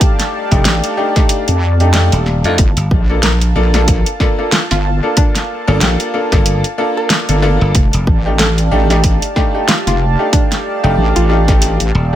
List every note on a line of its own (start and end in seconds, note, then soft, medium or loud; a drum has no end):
0.00 0.47 A3 medium
0.00 0.47 D4 medium
0.00 0.47 D#4 medium
0.00 0.47 G4 medium
0.00 2.55 G4 medium
0.00 2.55 D5 medium
0.00 2.55 F5 medium
0.00 2.55 A5 medium
0.00 kick loud
0.00 closed hi-hat medium
0.19 snare soft
0.19 closed hi-hat medium
0.51 0.63 F1 loud
0.51 0.94 A3 loud
0.51 0.94 D4 medium
0.51 0.94 D#4 medium
0.51 0.94 G4 loud
0.51 kick medium
0.51 closed hi-hat soft
0.65 0.81 A1 loud
0.65 snare loud
0.65 closed hi-hat medium
0.84 closed hi-hat medium
0.97 1.13 A3 medium
0.97 1.13 D4 medium
0.97 1.13 D#4 medium
0.97 1.13 G4 medium
1.16 1.43 A3 loud
1.16 1.43 D4 medium
1.16 1.43 D#4 medium
1.16 1.43 G4 loud
1.16 kick loud
1.16 snare medium
1.16 closed hi-hat soft
1.29 closed hi-hat medium
1.48 2.10 F2 loud
1.48 closed hi-hat medium
1.80 1.92 A3 medium
1.80 1.92 D4 medium
1.80 1.92 D#4 medium
1.80 1.92 G4 medium
1.80 closed hi-hat soft
1.94 2.14 A3 loud
1.94 2.14 D4 medium
1.94 2.14 D#4 medium
1.94 2.14 G4 loud
1.94 snare loud
1.94 closed hi-hat medium
2.12 2.42 D#1 loud
2.12 closed hi-hat medium
2.26 snare soft
2.44 2.56 F2 loud
2.44 2.57 A3 medium
2.44 2.57 D4 medium
2.44 2.57 D#4 medium
2.44 2.57 F4 loud
2.44 closed hi-hat soft
2.58 2.75 G1 loud
2.58 7.71 F5 medium
2.58 7.71 A5 medium
2.58 kick loud
2.58 closed hi-hat medium
2.77 2.89 G1 loud
2.77 closed hi-hat medium
2.91 3.54 A#1 loud
2.91 kick loud
3.10 3.25 A#3 medium
3.10 3.25 D4 medium
3.10 3.25 F4 medium
3.10 3.25 A4 medium
3.23 3.88 A#4 medium
3.23 snare loud
3.23 closed hi-hat medium
3.41 closed hi-hat medium
3.55 4.04 A#1 loud
3.55 3.70 A#3 medium
3.55 3.70 D4 medium
3.55 3.70 F4 medium
3.55 3.70 A4 loud
3.74 4.02 A#3 medium
3.74 4.02 D4 medium
3.74 4.02 F4 medium
3.74 4.02 A4 loud
3.74 snare medium
3.74 closed hi-hat soft
3.88 kick loud
3.88 closed hi-hat medium
4.06 closed hi-hat medium
4.20 4.36 A#3 medium
4.20 4.36 D4 medium
4.20 4.36 F4 medium
4.20 4.36 A4 loud
4.20 kick medium
4.20 snare medium
4.38 4.54 A#3 medium
4.38 4.54 D4 medium
4.38 4.54 F4 medium
4.38 4.54 A4 medium
4.52 4.64 F4 medium
4.52 snare loud
4.52 closed hi-hat medium
4.71 5.01 G1 loud
4.71 4.80 F4 medium
4.71 snare soft
4.71 closed hi-hat medium
5.03 5.63 A#3 medium
5.03 5.63 D4 medium
5.03 5.63 F4 medium
5.03 5.63 A4 medium
5.17 5.37 D4 medium
5.17 kick loud
5.17 closed hi-hat medium
5.35 snare soft
5.35 closed hi-hat medium
5.67 5.79 G1 loud
5.67 6.10 A#3 loud
5.67 6.10 D4 medium
5.67 5.79 D4 medium
5.67 6.10 F4 medium
5.67 6.10 A4 loud
5.81 5.97 A#1 loud
5.81 6.33 G4 medium
5.81 snare loud
5.81 closed hi-hat medium
6.00 closed hi-hat medium
6.14 6.30 A#3 medium
6.14 6.30 D4 medium
6.14 6.30 F4 medium
6.14 6.30 A4 medium
6.32 6.62 G1 loud
6.32 6.60 A#3 loud
6.32 6.60 D4 medium
6.32 6.60 F4 medium
6.32 6.60 A4 loud
6.32 kick loud
6.32 snare medium
6.32 closed hi-hat soft
6.46 closed hi-hat medium
6.64 closed hi-hat medium
6.78 7.25 A#3 medium
6.78 7.25 D4 medium
6.78 7.25 F4 medium
6.78 7.25 A4 loud
6.97 7.62 A#4 medium
7.10 snare loud
7.10 closed hi-hat medium
7.29 7.58 G1 loud
7.29 7.41 A#3 medium
7.29 7.41 D4 medium
7.29 7.41 F4 medium
7.29 7.41 A4 medium
7.29 closed hi-hat medium
7.42 7.71 A#3 loud
7.42 7.71 D4 medium
7.42 7.71 F4 medium
7.42 7.71 A4 loud
7.42 snare soft
7.61 7.73 G1 loud
7.74 7.91 F1 medium
7.74 12.15 G4 medium
7.74 12.15 D5 medium
7.74 12.15 F5 medium
7.74 12.15 A5 medium
7.74 kick loud
7.74 closed hi-hat medium
7.93 8.05 F1 loud
7.93 closed hi-hat medium
8.07 8.70 A1 loud
8.07 kick loud
8.26 8.41 A3 medium
8.26 8.41 D4 medium
8.26 8.41 D#4 medium
8.26 8.41 G4 medium
8.39 9.04 A4 medium
8.39 snare loud
8.39 closed hi-hat medium
8.58 closed hi-hat medium
8.71 9.20 A1 loud
8.71 8.86 A3 loud
8.71 8.86 D4 medium
8.71 8.86 D#4 medium
8.71 8.86 G4 loud
8.90 9.18 A3 medium
8.90 9.18 D4 medium
8.90 9.18 D#4 medium
8.90 9.18 G4 loud
8.90 snare medium
8.90 closed hi-hat soft
9.04 kick loud
9.04 closed hi-hat medium
9.22 closed hi-hat medium
9.36 9.52 A3 medium
9.36 9.52 D4 medium
9.36 9.52 D#4 medium
9.36 9.52 G4 loud
9.36 kick medium
9.36 snare medium
9.54 9.70 A3 medium
9.54 9.70 D4 medium
9.54 9.70 D#4 medium
9.54 9.70 G4 medium
9.68 9.81 F4 medium
9.68 snare loud
9.68 closed hi-hat medium
9.87 10.16 F1 loud
9.87 9.96 F4 medium
9.87 snare soft
9.87 closed hi-hat medium
10.19 10.79 A3 medium
10.19 10.79 D4 medium
10.19 10.79 D#4 medium
10.19 10.79 G4 medium
10.33 10.52 D4 medium
10.33 kick loud
10.33 closed hi-hat medium
10.52 snare soft
10.52 closed hi-hat medium
10.83 10.95 F1 loud
10.83 11.26 A3 loud
10.83 11.26 D4 medium
10.83 11.26 D#4 medium
10.83 11.27 G4 loud
10.98 11.13 A1 loud
11.16 11.78 A1 loud
11.16 11.25 F4 medium
11.16 closed hi-hat medium
11.29 11.46 A3 medium
11.29 11.46 D4 medium
11.29 11.46 D#4 medium
11.29 11.42 F4 medium
11.29 11.46 G4 medium
11.48 11.76 A3 loud
11.48 11.76 D4 medium
11.48 11.76 D#4 medium
11.48 11.76 G4 loud
11.48 kick loud
11.48 snare medium
11.48 closed hi-hat soft
11.62 closed hi-hat medium
11.80 11.92 A1 loud
11.80 closed hi-hat medium
11.95 12.15 D#1 loud